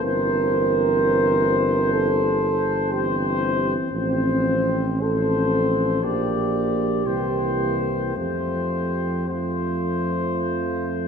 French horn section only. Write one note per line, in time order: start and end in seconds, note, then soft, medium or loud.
0.03 1.90 A#4 medium
1.92 2.91 A4 medium
2.92 3.77 G4 medium
3.94 5.00 C4 medium
5.02 6.03 A4 medium
6.05 8.13 G4 medium
8.16 9.26 G4 medium
9.29 11.08 F4 soft